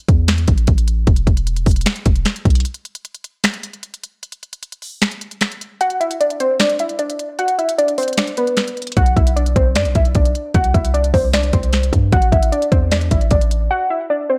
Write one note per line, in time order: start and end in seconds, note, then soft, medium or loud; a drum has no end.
0.09 0.46 E2 loud
0.09 kick medium
0.09 closed hi-hat medium
0.28 finger snap medium
0.28 snare loud
0.28 closed hi-hat medium
0.38 closed hi-hat medium
0.48 0.67 A1 loud
0.48 kick loud
0.48 closed hi-hat medium
0.58 closed hi-hat medium
0.67 1.06 A1 loud
0.67 kick loud
0.67 closed hi-hat medium
0.78 closed hi-hat medium
0.88 closed hi-hat medium
1.07 1.26 E1 loud
1.07 kick loud
1.07 closed hi-hat medium
1.16 closed hi-hat medium
1.27 1.65 E1 loud
1.27 kick medium
1.27 closed hi-hat medium
1.37 closed hi-hat medium
1.47 closed hi-hat medium
1.56 closed hi-hat medium
1.66 1.85 E1 loud
1.66 kick medium
1.66 closed hi-hat medium
1.66 open hi-hat medium
1.71 closed hi-hat medium
1.76 closed hi-hat medium
1.81 closed hi-hat medium
1.86 finger snap medium
1.86 snare loud
1.86 closed hi-hat medium
1.96 closed hi-hat medium
2.06 2.25 E1 loud
2.06 kick loud
2.06 closed hi-hat medium
2.16 closed hi-hat medium
2.25 finger snap medium
2.25 snare medium
2.25 closed hi-hat medium
2.36 closed hi-hat medium
2.45 2.64 B1 loud
2.45 kick loud
2.45 closed hi-hat soft
2.50 closed hi-hat medium
2.55 closed hi-hat medium
2.60 closed hi-hat medium
2.65 closed hi-hat medium
2.74 closed hi-hat medium
2.85 closed hi-hat medium
2.95 closed hi-hat medium
3.05 closed hi-hat medium
3.14 closed hi-hat medium
3.24 closed hi-hat medium
3.44 finger snap medium
3.44 snare loud
3.44 closed hi-hat medium
3.54 closed hi-hat medium
3.63 closed hi-hat medium
3.73 closed hi-hat soft
3.83 closed hi-hat medium
3.94 closed hi-hat medium
4.04 closed hi-hat medium
4.23 closed hi-hat medium
4.32 closed hi-hat medium
4.43 closed hi-hat medium
4.53 closed hi-hat medium
4.63 closed hi-hat medium
4.72 closed hi-hat medium
4.82 open hi-hat medium
5.02 finger snap medium
5.02 snare loud
5.02 closed hi-hat medium
5.11 closed hi-hat medium
5.21 closed hi-hat medium
5.31 closed hi-hat medium
5.41 finger snap medium
5.41 snare medium
5.41 closed hi-hat medium
5.52 closed hi-hat medium
5.61 closed hi-hat medium
5.81 5.97 F#5 loud
5.81 closed hi-hat medium
5.90 closed hi-hat medium
6.01 6.16 E5 medium
6.01 closed hi-hat medium
6.11 closed hi-hat medium
6.21 6.36 D5 medium
6.21 closed hi-hat medium
6.30 closed hi-hat medium
6.40 6.56 C5 medium
6.40 closed hi-hat medium
6.60 6.76 D5 medium
6.60 finger snap medium
6.60 snare loud
6.60 closed hi-hat medium
6.69 closed hi-hat medium
6.79 6.96 E5 medium
6.79 closed hi-hat medium
6.89 closed hi-hat medium
6.99 7.36 D5 medium
6.99 closed hi-hat medium
7.10 closed hi-hat medium
7.19 closed hi-hat medium
7.39 7.55 F#5 loud
7.39 closed hi-hat medium
7.48 closed hi-hat medium
7.59 7.74 E5 medium
7.59 closed hi-hat medium
7.69 closed hi-hat medium
7.78 7.94 D5 medium
7.78 closed hi-hat medium
7.88 closed hi-hat medium
7.98 8.14 C5 medium
7.98 closed hi-hat medium
7.98 open hi-hat medium
8.03 closed hi-hat medium
8.08 closed hi-hat medium
8.13 closed hi-hat medium
8.17 8.34 D5 medium
8.17 finger snap medium
8.17 snare loud
8.17 closed hi-hat medium
8.27 closed hi-hat medium
8.37 8.93 B4 medium
8.37 closed hi-hat medium
8.47 closed hi-hat soft
8.57 finger snap medium
8.57 snare medium
8.57 closed hi-hat medium
8.68 closed hi-hat medium
8.77 closed hi-hat soft
8.82 closed hi-hat medium
8.87 closed hi-hat medium
8.92 closed hi-hat medium
8.97 9.16 B1 loud
8.97 9.13 F#5 medium
8.97 kick loud
8.97 closed hi-hat medium
9.06 closed hi-hat medium
9.16 9.54 B1 loud
9.16 9.32 E5 medium
9.16 kick medium
9.16 closed hi-hat medium
9.27 closed hi-hat medium
9.36 9.52 D5 medium
9.36 closed hi-hat medium
9.46 closed hi-hat medium
9.56 9.77 B1 loud
9.56 9.72 C5 medium
9.56 kick medium
9.56 closed hi-hat medium
9.75 9.87 F#2 loud
9.75 9.92 D5 medium
9.75 finger snap medium
9.75 snare loud
9.75 closed hi-hat medium
9.85 9.95 B1 loud
9.85 closed hi-hat medium
9.95 10.14 B1 loud
9.95 10.11 E5 medium
9.95 kick medium
9.95 closed hi-hat medium
10.05 closed hi-hat medium
10.15 10.34 B1 loud
10.15 10.52 D5 medium
10.15 kick medium
10.15 closed hi-hat medium
10.25 closed hi-hat medium
10.35 closed hi-hat medium
10.54 10.74 C2 loud
10.54 10.70 F#5 loud
10.54 kick loud
10.54 closed hi-hat medium
10.64 closed hi-hat medium
10.74 11.12 C2 loud
10.74 10.90 E5 medium
10.74 kick medium
10.74 closed hi-hat medium
10.85 closed hi-hat medium
10.94 11.10 D5 medium
10.94 closed hi-hat medium
11.04 closed hi-hat medium
11.14 11.52 C2 loud
11.14 11.30 C5 medium
11.14 kick medium
11.14 open hi-hat medium
11.33 11.50 D5 loud
11.33 finger snap medium
11.33 snare loud
11.33 closed hi-hat medium
11.43 closed hi-hat medium
11.53 11.91 C2 loud
11.53 12.09 C5 medium
11.53 kick loud
11.53 closed hi-hat medium
11.63 closed hi-hat medium
11.73 finger snap medium
11.73 snare medium
11.73 closed hi-hat medium
11.83 closed hi-hat medium
11.93 12.12 G2 loud
11.93 kick loud
11.93 closed hi-hat medium
12.12 12.31 A1 loud
12.12 12.28 F#5 loud
12.12 kick loud
12.12 closed hi-hat medium
12.22 closed hi-hat medium
12.32 12.51 A1 loud
12.32 12.48 E5 medium
12.32 kick medium
12.32 closed hi-hat medium
12.43 closed hi-hat medium
12.52 12.68 D5 medium
12.52 closed hi-hat medium
12.62 closed hi-hat medium
12.72 13.10 E2 loud
12.72 12.88 C5 medium
12.72 kick loud
12.72 closed hi-hat medium
12.91 13.07 D5 medium
12.91 finger snap medium
12.91 snare loud
12.91 closed hi-hat medium
13.01 closed hi-hat medium
13.11 13.30 A1 loud
13.11 13.27 E5 medium
13.11 kick medium
13.11 closed hi-hat medium
13.21 closed hi-hat soft
13.31 13.69 A1 loud
13.31 13.68 D5 medium
13.31 kick loud
13.31 closed hi-hat medium
13.41 closed hi-hat medium
13.51 closed hi-hat medium
13.71 13.86 F#5 loud
13.90 14.06 E5 medium
14.10 14.26 D5 medium
14.30 14.38 C5 medium